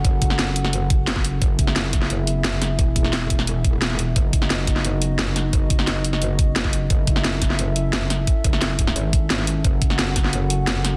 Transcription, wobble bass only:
X:1
M:4/4
L:1/8
Q:1/4=175
K:F#dor
V:1 name="Wobble bass" clef=bass
F,,,8 | F,,,8 | E,,,8 | F,,,8 |
F,,,8 | F,,,8 | z F,,,3 G,,,4 | F,,,8 |]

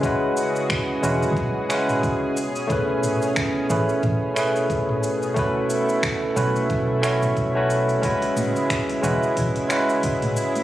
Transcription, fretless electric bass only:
X:1
M:4/4
L:1/8
Q:"Swing 16ths" 1/4=90
K:E
V:1 name="Fretless electric bass" clef=bass
z3 E,,, B,,, z3 | z3 A,,, A,,, z3 | z3 B,,, B,,,4 | z3 E,,, E,,, z3 |]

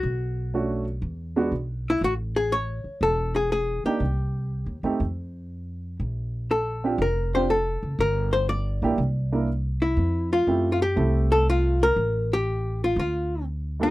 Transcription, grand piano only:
X:1
M:4/4
L:1/8
Q:"Swing" 1/4=121
K:F
V:1 name="Grand piano"
z2 [A,^CD^F] z2 [^G,=B,DF] z2 | z6 z [B,D_EG] | z3 [A,C_EG] z4 | z3 [CDFG] z [CDFG] z2 |
z3 [B,DEG] z [B,DEB] z2 | z2 [A,CEG] z [A,CEA]3 z | z6 z [G,,B,DFA] |]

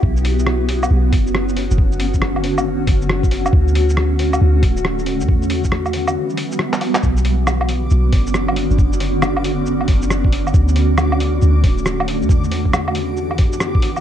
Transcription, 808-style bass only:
X:1
M:4/4
L:1/16
Q:"Swing 16ths" 1/4=137
K:Bm
V:1 name="808-style bass" clef=bass
B,,,8 B,,,2 F,,,4- F,,, F,,,- | F,,,8- F,,,2 F,,,6 | D,,8 D,,2 D,,,4- D,,, E,,- | E,,8 z8 |
B,,,8 B,,,2 F,,,4- F,,, F,,,- | F,,,8- F,,,2 F,,,6 | D,,8 D,,2 D,,,4- D,,, E,,- | E,,8- E,,2 F,,4- F,, z |]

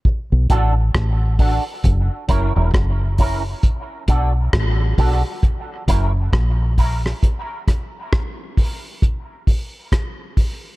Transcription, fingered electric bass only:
X:1
M:4/4
L:1/16
Q:"Swing 16ths" 1/4=67
K:Bm
V:1 name="Fingered electric bass" clef=bass
z B,,, A,,,2 A,,,3 z F,,, z F,,, E,,, F,,,4 | z2 B,,,2 A,,,2 B,,, z3 F,,,2 ^A,,,4 | z16 |]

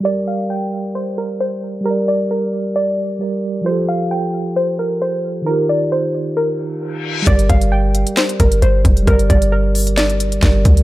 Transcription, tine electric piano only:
X:1
M:4/4
L:1/8
Q:1/4=133
K:Gm
V:1 name="Tine electric piano"
[G,GBd]8 | [G,GBd]6 [G,GBd]2 | [F,FGA]8 | [E,EFG]8 |
[G,GBd]8 | [G,GBd]6 [G,GBd]2 |]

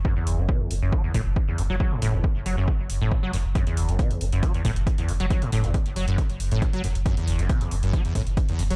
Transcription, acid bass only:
X:1
M:4/4
L:1/16
Q:1/4=137
K:F#m
V:1 name="Acid bass" clef=bass
F,, E,,2 F,, B,, E,, F,, F,, F, E,, A,, z2 E,, F,, F, | F, A,, A,, E,, F,, z F, F,, F, z2 A,, F,, F, F,, z | F,, E,,2 F,, B,, E,, F,, F,, F, E,, A,, z2 E,, F,, F, | F, A,, A,, E,, F,, z F, F,, F, z2 A,, F,, F, F,, z |
F,, E,,2 F,, B,, E,, F,, F,, F, E,, A,, z2 E,, F,, F, |]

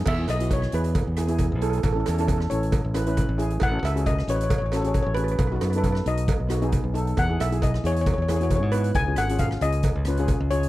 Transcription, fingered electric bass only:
X:1
M:4/4
L:1/16
Q:1/4=135
K:E
V:1 name="Fingered electric bass" clef=bass
E,,2 B,,,4 E,,3 E,,4 B,,,3 | A,,,2 E,,4 A,,,3 A,,,4 A,,,3 | A,,,2 C,,4 A,,,3 A,,,4 A,,,3 | B,,,2 F,,4 B,,,3 B,,,4 B,,,3 |
E,,2 B,,,4 E,,3 E,,4 G,,3 | C,,2 G,,,4 C,,3 C,,4 C,,3 |]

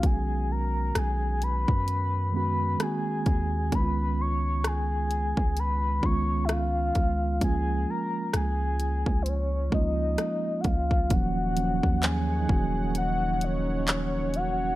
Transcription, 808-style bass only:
X:1
M:4/4
L:1/16
Q:"Swing 16ths" 1/4=65
K:Ebm
V:1 name="808-style bass" clef=bass
=B,,,4 B,,,3 ^F,,4- F,, z2 E,,2 | D,,6- D,, D,,3 D,,4 D,,2 | D,,2 z2 D,,3 D,,3 D,,2 z2 D,,2 | E,,,3 E,,3 E,,,8- E,,,2 |]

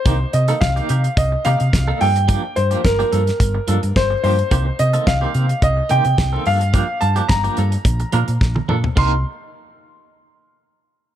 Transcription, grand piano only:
X:1
M:4/4
L:1/8
Q:1/4=108
K:Cdor
V:1 name="Grand piano"
c e f2 e f2 g- | g c B4 c c- | c e f2 e g2 f- | f a b4- b z |
c' z6 z |]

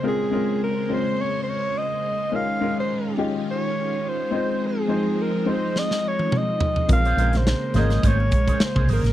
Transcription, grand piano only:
X:1
M:4/4
L:1/16
Q:"Swing 16ths" 1/4=105
K:Bbdor
V:1 name="Grand piano"
[A,CDFB]2 [A,CDFB]2 z2 [A,CDFB]4- [A,CDFB] z4 z | [A,DEFB]2 [A,DEFB]2 z2 [A,DEFG]4- [A,DEFG] z3 [A,CEFc]2- | [A,CEFc]2 [A,CEFc]2 z2 [A,CEFc]4- [A,CEFc] z4 z | [A,CDFB]2 [A,CDFB]2 z2 [A,B,DFB]4- [A,B,DFB] z4 z |]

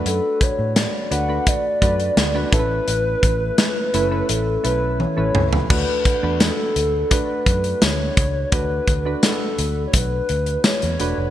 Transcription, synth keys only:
X:1
M:4/4
L:1/16
Q:1/4=85
K:Amix
V:1 name="Synth keys"
[A,DFB]4- [A,DFB] z [A,DFB] [A,DFB]3 [A,DFB]3 [A,DFB] [A,CEAB]2- | [A,CEAB]4- [A,CEAB] z [A,CEB] [A,CEB]3 [A,CEB]3 [A,CEB]3 | [K:D] [A,DFB]3 [A,DFB]4 z [A,DFB]6- [A,DFB] z | [A,DFB]3 [A,DFB]6- [A,DFB] z4 [A,DFB]2 |]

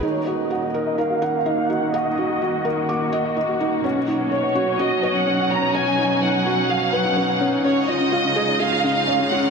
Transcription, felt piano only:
X:1
M:4/4
L:1/8
Q:1/4=126
K:Ebm
V:1 name="Felt piano"
E G g B B g E E | g G G B =d' e e E | ^C ^D ^c ^F F c C C | ^c ^D D ^F ^f =B B ^C |
D F f A A f D D |]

